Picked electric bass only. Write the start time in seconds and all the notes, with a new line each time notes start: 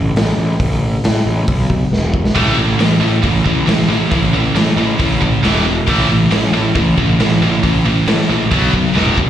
Already playing: A1
0.15 A1
0.37 A1
0.60 A1
1.04 A2
1.26 A1
1.48 B1
1.92 E1
2.36 A1
2.57 A1
2.79 A1
3.01 A2
3.24 A1
3.46 A1
3.66 A1
3.89 A1
4.12 A1
4.55 A2
4.77 A1
5.00 A1
5.43 E1
5.88 A1
6.09 A1
6.32 A1
6.52 A2
6.75 A1
6.98 A1
7.20 A1
7.41 A1
7.63 A1
8.07 A2
8.29 A#1
8.51 B1
8.95 E1